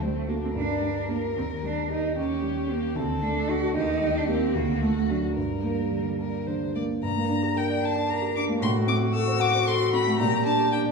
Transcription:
0.00 0.54 D2 soft
0.00 0.08 G3 soft
0.00 0.45 A3 soft
0.00 0.30 C4 soft
0.16 0.28 A3 soft
0.28 0.34 A#3 soft
0.28 0.53 D4 soft
0.28 0.53 F#4 soft
0.28 0.53 A4 soft
0.45 0.50 C4 soft
0.54 1.34 G2 soft
0.54 1.09 D4 medium
0.54 2.13 A#4 medium
0.81 1.25 G3 soft
1.09 1.18 A#3 soft
1.09 1.34 G4 soft
1.09 1.34 A#4 soft
1.37 2.15 D#2 soft
1.37 1.45 C4 soft
1.63 2.06 G3 soft
1.63 1.91 D4 medium
1.90 2.17 D#4 medium
1.90 2.14 G4 soft
2.16 2.93 D#2 soft
2.16 2.72 C#4 medium
2.16 2.97 G4 soft
2.42 2.85 G3 soft
2.68 2.99 A#3 medium
2.68 2.93 G4 soft
2.95 3.73 D2 soft
2.95 3.23 C4 medium
2.95 3.75 A4 medium
3.21 3.65 A3 soft
3.21 3.52 D4 medium
3.48 3.73 D4 soft
3.48 3.73 F#4 soft
3.48 3.75 F#4 medium
3.74 4.52 D#2 medium
3.74 4.19 D#4 medium
3.74 4.55 G4 medium
4.01 4.44 G3 soft
4.17 4.28 D4 medium
4.28 4.52 A#3 soft
4.28 4.57 C4 medium
4.28 4.52 G4 soft
4.54 5.34 D2 soft
4.54 4.82 A#3 medium
4.54 5.35 F#4 medium
4.82 5.26 A3 soft
4.82 4.90 A3 medium
5.10 5.18 F#3 medium
5.10 5.34 D4 soft
5.10 5.34 F#4 soft
5.35 6.99 G2 soft
5.35 6.72 G3 medium
5.35 6.11 A#4 soft
5.63 6.08 A#3 soft
5.91 6.36 D3 soft
6.19 6.64 D4 soft
6.19 6.48 A#4 soft
6.46 6.92 D3 soft
6.46 6.75 C5 soft
6.75 7.03 A#3 soft
6.75 6.83 D5 soft
7.03 8.58 G2 soft
7.03 7.58 A#5 medium
7.17 7.38 A#3 soft
7.29 7.51 D4 soft
7.43 7.65 G4 soft
7.56 7.78 A#4 soft
7.56 7.86 G5 medium
7.70 7.91 D5 soft
7.83 8.58 D4 medium
7.83 8.04 G5 soft
7.83 8.11 A5 medium
7.95 8.17 D5 soft
8.09 8.30 A#4 soft
8.09 8.36 A#5 medium
8.22 8.43 G4 soft
8.36 8.57 D4 soft
8.36 8.44 D6 medium
8.49 8.62 A#3 soft
8.61 10.15 A2 medium
8.61 10.16 F#4 medium
8.61 8.70 C6 medium
8.75 8.96 A3 soft
8.87 9.09 C4 soft
8.87 8.96 D6 medium
9.01 9.22 F#4 soft
9.14 9.36 A4 soft
9.14 9.43 E6 medium
9.28 9.49 C5 medium
9.40 9.61 F#5 medium
9.40 9.69 D6 medium
9.55 9.75 C5 medium
9.67 9.88 A4 soft
9.67 9.93 C6 medium
9.80 10.01 F#4 soft
9.93 10.14 C4 soft
9.93 10.18 B5 medium
10.07 10.19 A3 soft
10.18 10.92 A#2 medium
10.18 10.92 G4 medium
10.18 10.45 A#5 medium
10.32 10.54 G3 soft
10.46 10.67 D4 soft
10.46 10.72 A5 medium
10.60 10.81 G4 soft
10.72 10.92 D4 soft
10.72 10.80 G5 medium
10.86 10.92 D5 soft

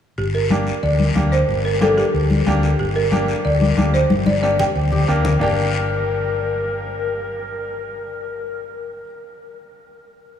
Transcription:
0.18 0.70 G1 medium
0.18 0.25 G4 medium
0.18 long guiro medium
0.34 0.85 A#4 medium
0.50 0.73 A#3 medium
0.50 0.73 D4 medium
0.50 0.73 G4 medium
0.50 high conga medium
0.50 short guiro medium
0.67 short guiro medium
0.83 1.09 D2 medium
0.83 1.29 D5 medium
0.83 long guiro medium
0.99 high conga medium
1.15 1.42 D2 medium
1.15 1.38 A#3 medium
1.15 1.39 D4 medium
1.15 1.39 G4 medium
1.15 high conga medium
1.15 short guiro medium
1.32 1.62 C5 medium
1.32 short guiro medium
1.49 2.01 G1 medium
1.49 long guiro medium
1.65 1.80 A#4 medium
1.81 2.04 A#3 medium
1.81 2.04 D4 medium
1.81 2.04 G4 medium
1.81 1.89 A4 medium
1.81 high conga medium
1.81 short guiro medium
1.98 2.59 G4 medium
1.98 short guiro medium
2.14 2.40 D2 medium
2.14 long guiro medium
2.30 high conga medium
2.47 2.73 D2 medium
2.47 2.69 A#3 medium
2.47 2.70 D4 medium
2.47 2.70 G4 medium
2.47 high conga medium
2.47 short guiro medium
2.63 short guiro medium
2.79 3.32 G1 medium
2.79 2.87 G4 medium
2.79 long guiro medium
2.96 3.41 A#4 medium
3.12 3.35 A#3 medium
3.12 3.35 D4 medium
3.12 3.35 G4 medium
3.12 high conga medium
3.12 short guiro medium
3.28 short guiro medium
3.45 3.71 D2 medium
3.45 3.91 D5 medium
3.45 long guiro medium
3.61 high conga medium
3.77 4.04 D2 medium
3.77 4.00 A#3 medium
3.77 4.00 D4 medium
3.77 4.01 G4 medium
3.77 high conga medium
3.77 short guiro medium
3.94 4.24 C5 medium
3.94 short guiro medium
4.10 4.63 G1 medium
4.10 high conga medium
4.10 long guiro medium
4.26 4.42 D5 medium
4.26 high conga loud
4.43 4.66 A#3 medium
4.43 4.66 D4 medium
4.43 4.66 G4 medium
4.43 4.50 D5 loud
4.43 short guiro medium
4.59 5.21 G5 medium
4.59 low conga loud
4.59 short guiro medium
4.76 5.02 D2 medium
4.76 long guiro medium
4.91 5.10 G4 medium
4.91 low conga medium
5.08 5.35 D2 medium
5.08 5.31 A#3 medium
5.08 5.31 D4 medium
5.08 5.32 G4 medium
5.08 5.41 A#4 medium
5.08 short guiro medium
5.25 low conga loud
5.25 short guiro medium
5.39 9.03 G1 medium
5.39 9.00 A#3 medium
5.39 9.02 D4 medium
5.39 9.04 G4 medium
5.39 8.79 A#4 medium
5.39 9.02 D5 medium
5.39 low conga medium
5.39 long guiro medium

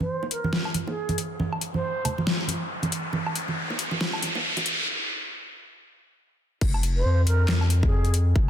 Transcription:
0.00 0.29 C5 medium
0.00 riser medium
0.00 high conga medium
0.23 high bongo medium
0.31 0.66 A#4 medium
0.31 closed hi-hat medium
0.44 high conga medium
0.53 snare loud
0.65 low woodblock medium
0.74 closed hi-hat medium
0.74 high conga medium
0.87 1.18 G#4 medium
0.87 high bongo medium
1.09 closed hi-hat soft
1.09 high conga medium
1.18 closed hi-hat medium
1.40 high conga loud
1.53 low woodblock soft
1.61 closed hi-hat medium
1.74 2.18 C5 medium
1.74 high conga medium
2.05 closed hi-hat medium
2.05 low conga medium
2.05 low woodblock medium
2.18 high conga medium
2.27 snare loud
2.48 closed hi-hat medium
2.48 high conga medium
2.83 closed hi-hat soft
2.83 high conga medium
2.92 closed hi-hat medium
3.13 high conga loud
3.27 low woodblock medium
3.36 closed hi-hat medium
3.48 high conga medium
3.70 high bongo medium
3.79 closed hi-hat medium
3.91 high conga loud
4.01 snare loud
4.13 low woodblock medium
4.22 closed hi-hat medium
4.22 high conga medium
4.35 high bongo medium
4.57 closed hi-hat soft
4.57 high conga loud
4.66 closed hi-hat medium
6.61 7.04 F1 loud
6.61 kick loud
6.61 crash loud
6.74 low woodblock medium
6.83 closed hi-hat medium
6.96 7.25 C5 medium
7.05 8.34 F2 loud
7.26 7.61 A#4 medium
7.26 closed hi-hat medium
7.48 snare loud
7.48 clap medium
7.61 low woodblock medium
7.70 closed hi-hat medium
7.83 8.14 G#4 medium
7.83 kick loud
8.05 closed hi-hat soft
8.14 closed hi-hat medium
8.36 8.50 F1 loud
8.36 kick loud

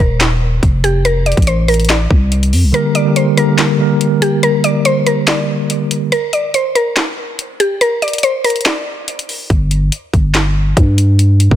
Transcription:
0.00 0.60 D#1 loud
0.00 0.80 A#4 medium
0.20 snare loud
0.20 clap medium
0.20 closed hi-hat medium
0.63 1.34 F1 loud
0.63 kick medium
0.63 closed hi-hat medium
0.84 1.03 G4 medium
0.84 closed hi-hat medium
1.05 1.24 A#4 loud
1.05 closed hi-hat medium
1.26 1.45 D5 medium
1.26 closed hi-hat soft
1.32 closed hi-hat medium
1.37 2.08 A1 loud
1.37 kick loud
1.37 closed hi-hat medium
1.42 closed hi-hat medium
1.47 1.66 C5 medium
1.47 closed hi-hat medium
1.68 1.88 A#4 medium
1.68 closed hi-hat medium
1.68 open hi-hat soft
1.74 closed hi-hat medium
1.80 closed hi-hat medium
1.85 closed hi-hat medium
1.89 2.70 D5 medium
1.89 snare loud
1.89 clap medium
1.89 closed hi-hat medium
2.11 2.54 C2 loud
2.11 kick medium
2.32 closed hi-hat medium
2.43 closed hi-hat medium
2.53 2.66 F2 loud
2.53 open hi-hat medium
2.64 2.74 C2 loud
2.72 3.03 D3 loud
2.72 3.03 G3 medium
2.72 3.04 A#3 medium
2.72 3.04 G4 medium
2.72 2.93 A#4 loud
2.72 3.04 A#4 loud
2.72 closed hi-hat medium
2.95 3.14 D5 medium
2.95 closed hi-hat medium
3.05 3.34 D3 medium
3.05 3.35 G3 medium
3.05 3.35 A#3 medium
3.05 3.35 G4 medium
3.05 3.36 A#4 medium
3.16 3.35 C5 medium
3.16 closed hi-hat medium
3.36 3.76 D3 medium
3.36 3.76 G3 medium
3.36 3.77 A#3 medium
3.36 3.77 G4 medium
3.36 4.18 A#4 medium
3.36 3.77 A#4 medium
3.36 closed hi-hat medium
3.58 snare loud
3.58 clap medium
3.58 closed hi-hat medium
3.78 4.42 D3 medium
3.78 4.43 G3 medium
3.78 4.43 A#3 medium
3.78 4.44 G4 medium
3.78 4.44 A#4 medium
4.01 closed hi-hat medium
4.22 4.41 G4 medium
4.22 closed hi-hat medium
4.43 4.62 A#4 loud
4.43 closed hi-hat medium
4.64 4.83 D5 medium
4.64 closed hi-hat medium
4.85 5.05 C5 loud
4.85 closed hi-hat medium
5.07 5.26 A#4 medium
5.07 closed hi-hat medium
5.27 6.08 D5 medium
5.27 snare loud
5.27 clap medium
5.27 closed hi-hat medium
5.70 closed hi-hat medium
5.91 closed hi-hat medium
6.12 6.31 A#4 loud
6.12 closed hi-hat medium
6.33 6.52 D5 medium
6.33 closed hi-hat medium
6.54 6.74 C5 medium
6.54 closed hi-hat medium
6.75 7.56 A#4 medium
6.75 closed hi-hat medium
6.97 snare loud
6.97 clap medium
6.97 closed hi-hat medium
7.39 closed hi-hat medium
7.60 7.79 G4 medium
7.60 closed hi-hat medium
7.81 8.00 A#4 loud
7.81 closed hi-hat medium
8.02 8.21 D5 medium
8.02 closed hi-hat soft
8.08 closed hi-hat medium
8.13 closed hi-hat medium
8.18 closed hi-hat medium
8.23 8.43 C5 medium
8.23 closed hi-hat medium
8.44 8.64 A#4 medium
8.44 closed hi-hat medium
8.44 open hi-hat soft
8.50 closed hi-hat medium
8.56 closed hi-hat medium
8.61 closed hi-hat medium
8.66 9.46 D5 medium
8.66 snare loud
8.66 clap medium
8.66 closed hi-hat medium
9.08 closed hi-hat medium
9.19 closed hi-hat medium
9.29 open hi-hat medium
9.50 9.91 G1 loud
9.50 kick loud
9.50 closed hi-hat medium
9.71 closed hi-hat medium
9.92 closed hi-hat medium
10.13 10.74 G1 loud
10.13 kick medium
10.13 closed hi-hat medium
10.35 snare loud
10.35 clap medium
10.35 closed hi-hat medium
10.77 11.48 G2 loud
10.77 kick medium
10.77 closed hi-hat medium
10.98 closed hi-hat medium
11.19 closed hi-hat medium
11.40 closed hi-hat medium
11.50 11.56 F1 loud
11.50 11.56 D3 medium
11.50 11.56 G3 medium
11.50 11.56 A#3 medium
11.50 11.56 G4 medium
11.50 kick loud

